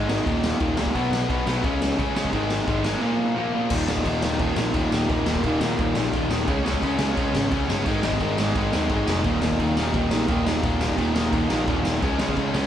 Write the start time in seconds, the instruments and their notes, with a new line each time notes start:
Already playing: picked electric bass G#1
0.08 overdriven electric guitar G#2 D#3 G#3, snare
0.25 picked electric bass D#1, overdriven electric guitar D#2 A#2 D#3, kick, crash
0.44 snare
0.60 picked electric bass D#1, overdriven electric guitar D#2 A#2 D#3, kick, crash
0.77 picked electric bass C#2, overdriven electric guitar D#2 A#2 D#3, snare
0.86 kick
0.95 picked electric bass B1, overdriven electric guitar B2 F#3 B3, kick, crash
1.12 picked electric bass B1, snare
1.29 picked electric bass B1, overdriven electric guitar B2 F#3 B3, kick, crash
1.47 picked electric bass B1, overdriven electric guitar B2 F#3 B3, snare
1.63 picked electric bass C#2, overdriven electric guitar C#3 G#3 C#4, kick, crash
1.82 snare
1.99 overdriven electric guitar C#3 G#3 C#4, picked electric bass C#3, kick, crash
2.16 overdriven electric guitar C#3 G#3 C#4, snare
2.25 kick
2.33 picked electric bass G#1, overdriven electric guitar G#2 D#3 G#3, kick, crash
2.50 snare
2.68 picked electric bass G#1, overdriven electric guitar G#2 D#3 G#3, kick, crash
2.84 overdriven electric guitar G#2 D#3 G#3, snare
3.02 overdriven electric guitar A#2 F3 A#3
3.38 overdriven electric guitar A#2 F3 A#3
3.54 overdriven electric guitar A#2 F3 A#3
3.70 picked electric bass D#1, overdriven electric guitar D#2 A#2 D#3, kick, crash
3.88 picked electric bass D#1, overdriven electric guitar D#2 A#2 D#3, snare
3.97 kick
4.05 picked electric bass D#1, overdriven electric guitar D#2 A#2 D#3, kick, crash
4.22 picked electric bass D#1, overdriven electric guitar D#2 A#2 D#3, snare
4.39 picked electric bass D#1, overdriven electric guitar D#2 A#2 D#3, kick, crash
4.56 picked electric bass A#1, overdriven electric guitar D#2 A#2 D#3, snare
4.73 picked electric bass D#1, overdriven electric guitar D#2 A#2 D#3, kick, crash
4.92 picked electric bass D#1, overdriven electric guitar D#2 A#2 D#3, snare
5.09 picked electric bass D#1, overdriven electric guitar D#2 A#2 D#3, kick, crash
5.26 picked electric bass D#1, overdriven electric guitar D#2 A#2 D#3, snare
5.36 kick
5.43 picked electric bass D#1, overdriven electric guitar D#2 A#2 D#3, kick, crash
5.61 picked electric bass D#1, overdriven electric guitar D#2 A#2 D#3, snare
5.79 picked electric bass D#1, overdriven electric guitar D#2 A#2 D#3, kick, crash
5.95 picked electric bass A#1, overdriven electric guitar D#2 A#2 D#3, snare
6.13 picked electric bass D#1, overdriven electric guitar D#2 A#2 D#3, kick, crash
6.30 picked electric bass D#1, overdriven electric guitar D#2 A#2 D#3, snare
6.48 picked electric bass C#2, overdriven electric guitar C#3 G#3 C#4, kick, crash
6.65 picked electric bass C#2, overdriven electric guitar C#3 G#3 C#4, snare
6.74 kick
6.82 picked electric bass C#2, overdriven electric guitar C#3 G#3 C#4, kick, crash
6.99 picked electric bass C#2, overdriven electric guitar C#3 G#3 C#4, snare
7.17 picked electric bass C#2, overdriven electric guitar C#3 G#3 C#4, kick, crash
7.34 picked electric bass G#1, overdriven electric guitar C#3 G#3 C#4, snare
7.52 picked electric bass C#2, overdriven electric guitar C#3 G#3 C#4, kick, crash
7.69 picked electric bass G1, overdriven electric guitar C#3 G#3 C#4, snare
7.86 picked electric bass G#1, overdriven electric guitar G#2 D#3 G#3, kick, crash
8.03 picked electric bass G#1, overdriven electric guitar G#2 D#3 G#3, snare
8.12 kick
8.20 picked electric bass G#1, overdriven electric guitar G#2 D#3 G#3, kick, crash
8.38 picked electric bass G#1, overdriven electric guitar G#2 D#3 G#3, snare
8.55 picked electric bass G#1, overdriven electric guitar G#2 D#3 G#3, kick, crash
8.73 picked electric bass D#2, overdriven electric guitar G#2 D#3 G#3, snare
8.89 picked electric bass G#1, overdriven electric guitar G#2 D#3 G#3, kick, crash
9.07 picked electric bass F1, overdriven electric guitar G#2 D#3 G#3, snare
9.24 picked electric bass D#1, overdriven electric guitar D#2 A#2 D#3, kick, crash
9.42 picked electric bass D#1, overdriven electric guitar D#2 A#2 D#3, snare
9.51 kick
9.58 picked electric bass D#1, overdriven electric guitar D#2 A#2 D#3, kick, crash
9.77 picked electric bass D#1, overdriven electric guitar D#2 A#2 D#3, snare
9.93 picked electric bass D#1, overdriven electric guitar D#2 A#2 D#3, kick, crash
10.11 picked electric bass A#1, overdriven electric guitar D#2 A#2 D#3, snare
10.28 picked electric bass D#1, overdriven electric guitar D#2 A#2 D#3, kick, crash
10.47 picked electric bass D#1, overdriven electric guitar D#2 A#2 D#3, snare
10.63 picked electric bass D#1, overdriven electric guitar D#2 A#2 D#3, kick, crash
10.81 picked electric bass D#1, overdriven electric guitar D#2 A#2 D#3, snare
10.89 kick
10.98 picked electric bass D#1, overdriven electric guitar D#2 A#2 D#3, kick, crash
11.15 picked electric bass D#1, overdriven electric guitar D#2 A#2 D#3, snare
11.33 picked electric bass D#1, overdriven electric guitar D#2 A#2 D#3, kick, crash
11.50 picked electric bass A#1, overdriven electric guitar D#2 A#2 D#3, snare
11.68 picked electric bass D#1, overdriven electric guitar D#2 A#2 D#3, kick, crash
11.85 picked electric bass D#1, overdriven electric guitar D#2 A#2 D#3, snare
12.02 picked electric bass C#2, overdriven electric guitar C#3 G#3 C#4, kick, crash
12.19 picked electric bass C#2, overdriven electric guitar C#3 G#3 C#4, snare
12.28 kick
12.37 picked electric bass C#2, overdriven electric guitar C#3 G#3 C#4, kick, crash
12.54 picked electric bass C#2, overdriven electric guitar C#3 G#3 C#4, snare